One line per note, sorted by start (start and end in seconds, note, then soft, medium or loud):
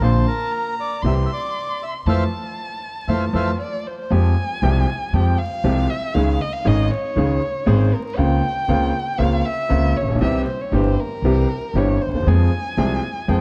0.00 0.22 A#1 medium
0.00 0.23 A#1 medium
0.00 0.23 A#2 medium
0.00 0.23 D3 medium
0.00 0.23 A#3 medium
0.00 0.23 C4 soft
0.00 0.23 F4 medium
0.00 0.26 C5 medium
0.00 0.53 A5 medium
0.27 0.75 A#4 medium
0.52 1.04 A#5 medium
0.80 1.03 D5 medium
1.02 1.25 C2 medium
1.02 1.25 C3 medium
1.02 1.25 E3 medium
1.02 1.25 G3 medium
1.02 1.25 C4 medium
1.02 1.26 G4 medium
1.02 2.08 C6 medium
1.07 1.14 E5 medium
1.26 1.31 E5 medium
1.33 1.84 D5 medium
1.83 1.94 E5 medium
2.06 2.25 F2 medium
2.06 2.23 E3 medium
2.06 2.23 F3 medium
2.06 2.23 A3 medium
2.06 2.24 C5 medium
2.06 2.24 E5 medium
2.06 2.24 F5 medium
2.06 3.60 A5 medium
3.08 3.27 F2 medium
3.08 3.25 E3 medium
3.08 3.25 F3 medium
3.08 3.25 A3 medium
3.08 3.25 C5 medium
3.08 3.25 E5 medium
3.08 3.25 F5 medium
3.33 3.53 F2 medium
3.33 3.50 E3 medium
3.33 3.50 F3 medium
3.33 3.50 A3 medium
3.33 3.51 C5 medium
3.33 3.51 E5 medium
3.33 3.51 F5 medium
3.61 3.88 D5 medium
3.87 3.98 C5 medium
3.99 4.13 C5 medium
4.10 4.32 F2 medium
4.10 4.33 F2 medium
4.10 4.32 F3 medium
4.10 4.32 G#3 medium
4.10 4.33 C4 medium
4.10 4.32 G4 medium
4.10 5.15 G#5 medium
4.62 4.83 C2 medium
4.62 4.84 C2 medium
4.62 4.84 C3 medium
4.62 4.84 F3 medium
4.62 4.84 G#3 medium
4.62 4.84 C4 medium
4.62 4.84 G4 medium
5.13 5.34 F2 medium
5.13 5.35 F2 medium
5.13 5.35 F3 medium
5.13 5.35 G#3 medium
5.13 5.35 C4 medium
5.13 5.35 G4 medium
5.13 5.40 G5 medium
5.38 5.91 F5 medium
5.64 5.85 C2 medium
5.64 5.86 C2 medium
5.64 5.86 C3 medium
5.64 5.86 F3 medium
5.64 5.86 G#3 medium
5.64 5.86 C4 medium
5.64 5.86 G4 medium
5.90 6.15 E5 medium
6.14 6.36 C#2 medium
6.14 6.37 C#3 medium
6.14 6.36 D#3 medium
6.14 6.37 G#3 medium
6.14 6.36 C#4 medium
6.14 6.37 G#4 medium
6.14 6.42 F5 medium
6.41 6.54 D#5 medium
6.53 6.69 F5 medium
6.65 6.87 G#1 medium
6.65 6.87 G#2 medium
6.65 6.87 D#3 medium
6.65 6.87 G#3 medium
6.65 6.87 C#4 medium
6.65 6.87 G#4 medium
6.65 6.92 D#5 medium
6.91 7.68 C#5 medium
7.16 7.38 C#2 medium
7.16 7.38 C#3 medium
7.16 7.38 D#3 medium
7.16 7.38 G#3 medium
7.16 7.38 C#4 medium
7.16 7.38 G#4 medium
7.66 7.88 G#1 medium
7.66 7.89 G#1 medium
7.66 7.88 G#2 medium
7.66 7.88 D#3 medium
7.66 7.88 G#3 medium
7.66 7.88 C#4 medium
7.66 7.89 G#4 medium
7.66 7.95 C5 medium
7.94 8.05 A#4 medium
8.05 8.18 A#4 medium
8.17 8.39 C#2 medium
8.17 8.40 C#2 medium
8.17 8.39 C#3 medium
8.17 8.39 A#3 medium
8.17 8.39 C4 medium
8.17 8.40 F4 medium
8.17 9.19 G5 medium
8.68 8.90 C#2 medium
8.68 8.90 C#3 medium
8.68 8.90 A#3 medium
8.68 8.90 C4 medium
8.68 8.90 F4 medium
9.18 9.41 C#2 medium
9.18 9.40 C#3 medium
9.18 9.40 A#3 medium
9.18 9.41 C4 medium
9.18 9.41 F4 medium
9.18 9.46 F5 medium
9.45 9.98 E5 medium
9.69 9.92 C#2 medium
9.69 9.92 C#3 medium
9.69 9.91 A#3 medium
9.69 9.91 C4 medium
9.69 9.92 F4 medium
9.97 10.21 C#5 medium
10.01 10.08 A1 soft
10.08 10.15 A#1 medium
10.08 10.13 A#1 medium
10.14 10.20 B1 medium
10.14 10.22 B1 medium
10.21 10.42 C2 medium
10.21 10.43 C2 medium
10.21 10.43 C3 medium
10.21 10.43 E3 medium
10.21 10.42 G3 medium
10.21 10.43 C4 medium
10.21 10.43 G4 medium
10.21 10.45 E5 medium
10.47 10.62 C5 medium
10.61 10.76 C#5 medium
10.72 10.94 G1 medium
10.72 10.94 G2 medium
10.72 10.94 E3 medium
10.72 10.94 G3 medium
10.72 10.94 C4 medium
10.72 10.94 G4 medium
10.72 11.00 C5 medium
10.99 11.79 A#4 medium
11.22 11.44 C2 medium
11.22 11.45 C2 medium
11.22 11.45 C3 medium
11.22 11.45 E3 medium
11.22 11.45 G3 medium
11.22 11.45 C4 medium
11.22 11.46 G4 medium
11.74 11.96 G1 medium
11.74 11.97 G2 medium
11.74 11.96 E3 medium
11.74 11.96 G3 medium
11.74 11.96 C4 medium
11.74 11.96 G4 medium
11.74 12.03 C#5 medium
12.01 12.13 C5 medium
12.07 12.12 D2 soft
12.07 12.14 D2 soft
12.13 12.18 D#2 medium
12.13 12.20 D#2 medium
12.13 12.29 C5 medium
12.19 12.25 E2 medium
12.19 12.27 E2 medium
12.26 12.47 F2 medium
12.26 12.48 F2 medium
12.26 12.48 F3 medium
12.26 12.48 G#3 medium
12.26 12.48 C4 medium
12.26 12.48 G#4 medium
12.26 13.30 G#5 medium
12.77 12.98 C2 medium
12.77 12.99 C2 medium
12.77 12.98 C3 medium
12.77 12.98 F3 medium
12.77 12.99 G#3 medium
12.77 12.99 C4 medium
12.77 12.99 G#4 medium
13.28 13.41 F2 medium
13.28 13.41 F3 medium
13.28 13.41 G#3 medium
13.28 13.41 C4 medium
13.28 13.41 G#4 medium
13.28 13.41 G5 medium